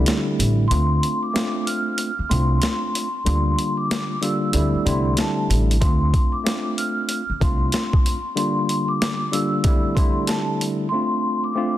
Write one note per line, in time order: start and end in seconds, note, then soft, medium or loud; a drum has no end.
0.00 0.65 D3 loud
0.00 0.65 G3 medium
0.00 0.66 A3 medium
0.00 0.66 C4 medium
0.00 0.66 E4 loud
0.06 snare loud
0.06 closed hi-hat medium
0.39 0.66 A1 medium
0.39 closed hi-hat medium
0.68 0.98 D2 loud
0.68 1.31 A3 medium
0.68 1.31 C4 medium
0.68 1.18 C6 loud
0.68 closed hi-hat medium
0.72 1.32 D4 medium
0.72 1.32 F4 loud
1.03 closed hi-hat medium
1.23 1.64 D6 medium
1.33 2.10 A3 medium
1.33 2.10 C4 medium
1.33 2.11 D4 medium
1.33 2.11 F4 loud
1.33 snare loud
1.33 closed hi-hat medium
1.67 2.27 F6 medium
1.67 closed hi-hat medium
1.98 closed hi-hat loud
2.19 muted upright bass stroke soft
2.29 2.58 C2 loud
2.29 3.06 A3 medium
2.29 3.06 C4 loud
2.29 3.07 D4 medium
2.29 3.07 F4 loud
2.29 3.22 C6 medium
2.29 closed hi-hat medium
2.62 snare loud
2.62 closed hi-hat medium
2.95 closed hi-hat medium
3.25 3.53 D2 loud
3.25 4.16 D3 medium
3.25 4.16 G3 medium
3.25 4.16 A#3 medium
3.25 4.17 D4 medium
3.25 4.17 F4 loud
3.25 3.75 C6 loud
3.25 closed hi-hat medium
3.59 closed hi-hat medium
3.77 4.19 D6 medium
3.91 snare loud
3.91 closed hi-hat loud
4.21 4.52 D3 medium
4.21 4.53 G3 medium
4.21 4.54 A#3 medium
4.21 4.54 D4 medium
4.21 4.55 F4 loud
4.21 4.82 E6 medium
4.21 closed hi-hat medium
4.53 4.71 D2 loud
4.53 4.84 D3 loud
4.53 4.84 G3 medium
4.53 4.84 A3 medium
4.53 4.85 C4 medium
4.53 4.85 E4 loud
4.53 closed hi-hat medium
4.74 muted upright bass stroke soft
4.85 5.13 C2 loud
4.85 5.75 D3 loud
4.85 5.76 G3 medium
4.85 5.76 A3 medium
4.85 5.76 C4 medium
4.85 5.77 E4 loud
4.85 5.15 C6 medium
4.85 closed hi-hat medium
5.17 5.47 A5 medium
5.17 snare loud
5.17 closed hi-hat medium
5.50 5.77 A1 loud
5.50 closed hi-hat medium
5.71 closed hi-hat medium
5.81 6.09 D2 loud
5.81 6.41 A3 medium
5.81 6.42 C4 medium
5.81 6.42 D4 medium
5.81 6.43 F4 loud
5.81 6.30 C6 loud
5.81 kick loud
5.81 closed hi-hat medium
6.14 kick medium
6.14 closed hi-hat medium
6.32 6.74 D6 medium
6.44 7.21 A3 medium
6.44 7.21 C4 loud
6.44 7.21 D4 medium
6.44 7.22 F4 loud
6.44 snare loud
6.44 closed hi-hat loud
6.78 7.38 F6 medium
6.78 closed hi-hat medium
7.09 closed hi-hat loud
7.29 muted upright bass stroke soft
7.40 7.68 C2 medium
7.40 8.17 A3 medium
7.40 8.17 C4 medium
7.40 8.17 D4 medium
7.40 8.18 F4 loud
7.40 8.33 C6 medium
7.40 kick loud
7.40 closed hi-hat medium
7.72 snare loud
7.72 closed hi-hat loud
7.93 kick loud
8.06 closed hi-hat medium
8.35 9.26 D3 medium
8.35 9.26 G3 medium
8.35 9.27 A#3 medium
8.35 9.27 D4 medium
8.35 9.27 F4 loud
8.35 8.86 C6 medium
8.35 closed hi-hat medium
8.69 closed hi-hat medium
8.88 9.30 D6 medium
9.02 snare loud
9.02 closed hi-hat medium
9.31 9.63 D3 medium
9.31 9.63 G3 medium
9.31 9.65 A#3 medium
9.31 9.65 D4 medium
9.31 9.65 F4 loud
9.31 9.93 E6 medium
9.31 closed hi-hat medium
9.64 9.94 D3 loud
9.64 9.95 G3 medium
9.64 9.95 A3 medium
9.64 9.95 C4 medium
9.64 9.96 E4 loud
9.64 kick loud
9.64 closed hi-hat loud
9.95 10.86 D3 loud
9.95 10.86 G3 medium
9.95 10.87 A3 medium
9.95 10.87 C4 medium
9.95 10.87 E4 loud
9.95 10.24 C6 medium
9.95 kick loud
9.95 closed hi-hat medium
10.27 10.57 A5 medium
10.27 snare loud
10.27 closed hi-hat medium
10.61 closed hi-hat medium
10.89 11.52 A3 medium
10.89 11.52 C4 medium
10.89 11.39 C6 loud
10.94 11.53 D4 medium
10.94 11.53 F4 loud
11.44 11.78 D6 medium
11.55 11.78 A3 medium
11.55 11.78 C4 medium
11.55 11.78 D4 medium
11.55 11.78 F4 loud